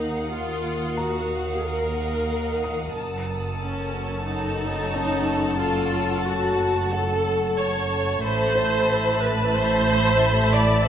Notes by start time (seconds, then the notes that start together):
Already playing: D#2 D#4 A#4 D#5 F5 F#5 D#6
0.32 F4
0.97 F#4 A#5
1.64 A#4
2.64 D#6
2.95 F#1 F#2 A4 C#5 F#5 A5 E6
3.61 C#4 C#6
4.28 D#4
4.94 C#4 C#5
5.59 F4
6.27 F#4
6.93 A4 F#5
7.58 C#5
8.23 A1 A2 A4 C5 E5 A5 B5 E6 A6
8.55 C5
9.23 B4
9.55 C5
10.54 D5